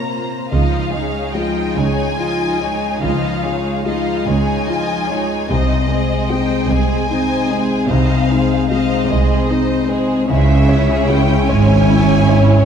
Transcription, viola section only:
0.00 0.28 A#3 medium
0.00 0.32 F4 soft
0.52 0.90 F3 soft
0.52 0.90 F4 soft
0.93 1.35 G#3 soft
0.93 1.35 D#4 soft
1.34 1.77 F3 soft
1.34 1.77 F4 soft
1.76 2.19 G#3 soft
1.76 2.19 D#4 soft
2.19 2.58 F3 soft
2.19 2.58 F4 soft
2.60 3.02 G#3 soft
2.60 3.03 D#4 soft
3.02 3.44 F3 soft
3.02 3.44 F4 soft
3.43 3.85 G#3 soft
3.43 3.85 D#4 soft
3.85 4.25 F3 soft
3.85 4.24 F4 soft
4.27 4.69 G#3 soft
4.27 4.69 D#4 soft
4.68 5.10 F3 soft
4.68 5.10 F4 soft
5.09 5.50 G#3 soft
5.09 5.48 D#4 soft
5.49 5.86 C4 soft
5.49 5.86 D#4 soft
5.89 6.29 G#3 soft
5.89 6.28 C4 soft
6.30 6.69 C4 soft
6.30 6.70 D#4 soft
6.70 7.10 G#3 soft
6.70 7.08 C4 soft
7.09 7.47 C4 soft
7.09 7.47 D#4 soft
7.49 7.90 G#3 soft
7.49 7.88 C4 soft
7.89 8.28 C4 medium
7.89 8.30 D#4 soft
8.30 8.71 G#3 soft
8.30 8.69 C4 soft
8.70 9.07 C4 soft
8.70 9.07 D#4 soft
9.10 9.49 G#3 soft
9.10 9.47 C4 soft
9.49 9.87 C4 soft
9.49 9.89 D#4 soft
9.88 10.29 G#3 soft
9.88 10.29 C4 soft
10.29 12.65 C#4 medium
10.29 12.65 E4 medium

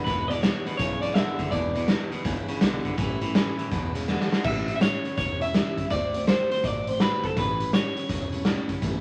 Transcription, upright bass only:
0.07 0.49 E1 medium
0.66 muted upright bass stroke medium
0.79 1.21 B1 medium
1.39 muted upright bass stroke medium
1.52 1.94 E1 loud
2.11 muted upright bass stroke medium
2.25 2.45 C#2 medium
2.48 muted upright bass stroke medium
2.61 2.81 B1 medium
2.85 muted upright bass stroke medium
2.98 3.40 A1 loud
3.58 muted upright bass stroke medium
3.72 4.13 E1 medium
4.32 muted upright bass stroke medium
4.45 4.86 A1 loud
5.04 muted upright bass stroke medium
5.17 5.59 E1 medium
5.90 6.32 D2 loud
6.51 muted upright bass stroke medium
6.64 7.06 A1 medium
7.37 7.79 A1 loud
7.97 muted upright bass stroke medium
8.10 8.51 E1 medium
8.82 9.01 A1 medium

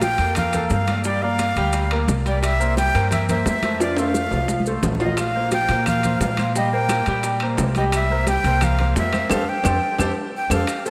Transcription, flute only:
0.02 0.34 G5 loud
0.37 0.69 F5 loud
0.72 1.03 F5 medium
1.06 1.24 D5 medium
1.22 1.91 F5 loud
2.27 2.42 D5 medium
2.43 2.75 E5 loud
2.78 3.09 G5 loud
3.12 3.28 E5 medium
3.29 3.45 E5 medium
3.47 3.79 E5 loud
3.81 4.01 D5 medium
3.99 4.67 F5 medium
5.03 5.18 D#5 medium
5.19 5.51 F5 loud
5.53 5.85 G5 loud
5.88 6.19 F5 loud
6.22 6.53 F5 medium
6.57 6.72 D#5 medium
6.72 7.37 G5 loud
7.78 7.84 D#5 medium
7.95 8.26 E5 loud
8.29 8.65 G5 loud
8.64 8.97 F5 loud
8.98 9.29 E5 loud
9.31 9.50 F5 loud
9.49 10.17 G5 loud
10.37 10.51 G5 medium
10.53 10.84 F5 loud
10.87 10.90 A5 loud

